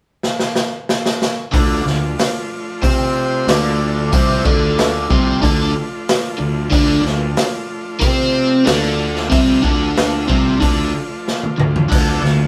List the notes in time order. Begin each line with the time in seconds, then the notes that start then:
0.23 snare
0.40 snare
0.56 snare
0.89 snare
1.06 snare
1.22 snare
1.52 D2 D3 F3 A3 D4 F4, kick, open hi-hat
1.85 D2 D3, snare
2.19 snare, open hi-hat
2.82 C3 C4 C5, kick, open hi-hat
3.47 D2 D3 D4, snare, open hi-hat
4.12 C2 C3 C4, kick, open hi-hat
4.45 D2 D3 D4, kick
4.78 snare, open hi-hat
5.10 C2 C3 C4, kick
5.42 D2 D3 D4, kick, open hi-hat
6.09 snare, open hi-hat
6.38 D2 D3
6.70 D2 D3 D4, kick, open hi-hat
7.02 D2 D3, snare
7.37 snare, open hi-hat
8.00 C3 C4 C5, kick, open hi-hat
8.65 D2 D3 D4, snare, open hi-hat
9.16 snare
9.30 C2 C3 C4, kick, open hi-hat
9.62 D2 D3 D4, kick
9.97 snare, open hi-hat
10.27 C2 C3 C4, kick
10.60 D2 D3 D4, kick, open hi-hat
11.28 snare
11.43 high tom
11.58 D2 D3, mid tom
11.76 floor tom
11.89 D2 D3 C4 D4, kick, open hi-hat, crash
12.22 D2 D3, snare